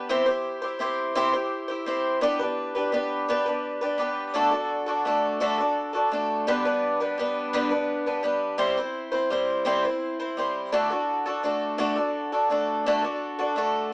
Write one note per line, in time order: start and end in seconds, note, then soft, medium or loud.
0.00 0.10 B4 medium
0.09 0.28 C3 medium
0.09 0.28 C4 medium
0.09 0.27 E4 medium
0.09 0.26 G4 medium
0.09 0.25 C5 loud
0.26 0.63 E4 medium
0.26 0.62 G4 medium
0.26 0.60 C5 medium
0.62 0.79 E4 soft
0.62 0.80 G4 medium
0.62 0.81 C5 medium
0.79 1.14 C4 medium
0.79 1.14 E4 medium
0.79 1.15 G4 medium
0.79 1.16 C5 medium
1.15 1.34 C3 medium
1.15 1.34 C4 medium
1.15 1.34 E4 loud
1.15 1.33 G4 loud
1.15 1.32 C5 loud
1.33 1.70 E4 soft
1.33 1.68 G4 soft
1.33 1.67 C5 medium
1.68 1.86 E4 soft
1.68 1.86 G4 medium
1.68 1.87 C5 medium
1.86 2.21 C4 medium
1.86 2.22 E4 medium
1.86 2.22 G4 medium
1.86 2.23 C5 medium
2.21 2.40 B3 medium
2.21 2.41 D4 medium
2.21 2.39 G4 loud
2.21 2.38 B4 loud
2.39 2.76 D4 medium
2.39 2.75 G4 medium
2.39 2.74 B4 medium
2.75 2.92 D4 soft
2.75 2.93 G4 medium
2.75 2.93 B4 medium
2.92 3.27 B3 medium
2.92 3.29 D4 medium
2.92 3.29 G4 medium
2.92 3.29 B4 medium
3.28 3.47 B3 medium
3.28 3.47 D4 medium
3.28 3.46 G4 medium
3.28 3.44 B4 loud
3.46 3.82 D4 soft
3.46 3.81 G4 medium
3.46 3.80 B4 medium
3.81 3.98 D4 medium
3.81 3.99 G4 medium
3.81 3.99 B4 medium
3.98 4.34 B3 medium
3.98 4.34 D4 medium
3.98 4.35 G4 medium
3.98 4.35 B4 medium
4.34 4.53 D3 medium
4.34 4.53 A3 medium
4.34 4.53 D4 medium
4.34 4.51 F#4 medium
4.34 4.50 A4 loud
4.51 4.88 D4 soft
4.51 4.86 F#4 medium
4.51 4.85 A4 medium
4.86 5.04 D4 medium
4.86 5.06 F#4 medium
4.86 5.05 A4 medium
5.05 5.40 A3 medium
5.05 5.40 D4 medium
5.05 5.40 F#4 medium
5.05 5.41 A4 medium
5.40 5.59 D3 medium
5.40 5.59 A3 medium
5.40 5.60 D4 medium
5.40 5.58 F#4 medium
5.40 5.57 A4 loud
5.58 5.95 D4 soft
5.58 5.93 F#4 soft
5.58 5.92 A4 medium
5.93 6.12 D4 soft
5.93 6.12 F#4 medium
5.93 6.12 A4 medium
6.11 6.48 A3 medium
6.11 6.47 D4 medium
6.11 6.48 F#4 medium
6.11 6.48 A4 medium
6.47 6.65 G2 medium
6.47 6.66 D3 medium
6.47 6.66 G3 medium
6.47 6.66 B3 loud
6.47 6.64 D4 loud
6.47 6.64 B4 loud
6.65 7.01 G3 medium
6.65 7.00 B3 medium
6.65 7.00 D4 medium
6.65 6.99 B4 medium
7.00 7.16 G3 medium
7.00 7.18 B3 medium
7.00 7.18 D4 medium
7.00 7.19 B4 medium
7.18 7.53 G3 medium
7.18 7.53 B3 medium
7.18 7.53 D4 medium
7.18 7.54 B4 medium
7.53 7.72 G2 medium
7.53 7.72 D3 loud
7.53 7.72 G3 medium
7.53 7.70 B3 loud
7.53 7.70 D4 loud
7.53 7.69 B4 loud
7.70 8.07 G3 medium
7.70 8.06 B3 soft
7.70 8.06 D4 medium
7.70 8.05 B4 medium
8.06 8.21 G3 soft
8.06 8.22 B3 medium
8.06 8.23 D4 medium
8.06 8.24 B4 medium
8.23 8.57 G3 medium
8.23 8.58 B3 medium
8.23 8.59 D4 medium
8.23 8.58 B4 medium
8.58 8.77 C3 loud
8.58 8.77 G3 medium
8.58 8.78 C4 loud
8.58 8.77 E4 medium
8.58 8.76 C5 loud
8.77 9.13 C4 medium
8.77 9.11 E4 medium
8.77 9.10 C5 medium
9.12 9.30 C4 medium
9.12 9.30 E4 medium
9.12 9.31 C5 medium
9.30 9.64 G3 medium
9.30 9.65 C4 medium
9.30 9.65 E4 medium
9.30 9.66 C5 medium
9.65 9.84 C3 loud
9.65 9.84 G3 loud
9.65 9.84 C4 loud
9.65 9.85 E4 loud
9.65 9.84 C5 loud
9.85 10.20 C4 soft
9.85 10.19 E4 medium
9.85 10.18 C5 medium
10.20 10.37 C4 soft
10.20 10.37 E4 medium
10.20 10.38 C5 medium
10.37 10.72 G3 medium
10.37 10.73 C4 medium
10.37 10.73 E4 medium
10.37 10.73 C5 medium
10.72 10.91 D3 medium
10.72 10.91 A3 medium
10.72 10.91 D4 loud
10.72 10.91 F#4 medium
10.72 10.89 A4 medium
10.90 11.27 D4 medium
10.90 11.26 F#4 medium
10.90 11.24 A4 medium
11.26 11.43 D4 soft
11.26 11.44 F#4 medium
11.26 11.44 A4 medium
11.43 11.77 A3 medium
11.43 11.77 D4 medium
11.43 11.78 F#4 medium
11.43 11.79 A4 medium
11.78 11.97 D3 medium
11.78 11.97 A3 loud
11.78 11.97 D4 loud
11.78 11.96 F#4 loud
11.78 11.94 A4 loud
11.95 12.33 D4 soft
11.95 12.32 F#4 soft
11.95 12.31 A4 soft
12.32 12.49 D4 medium
12.32 12.50 F#4 medium
12.32 12.50 A4 medium
12.50 12.85 A3 medium
12.50 12.86 D4 medium
12.50 12.86 F#4 medium
12.50 12.87 A4 medium
12.86 13.04 D3 medium
12.86 13.04 A3 loud
12.86 13.03 D4 medium
12.86 13.03 F#4 loud
12.86 13.01 A4 loud
13.02 13.39 D4 medium
13.02 13.38 F#4 medium
13.02 13.37 A4 medium
13.39 13.56 D4 medium
13.39 13.57 F#4 medium
13.39 13.57 A4 medium
13.56 13.92 A3 medium
13.56 13.92 D4 medium
13.56 13.92 F#4 medium
13.56 13.92 A4 medium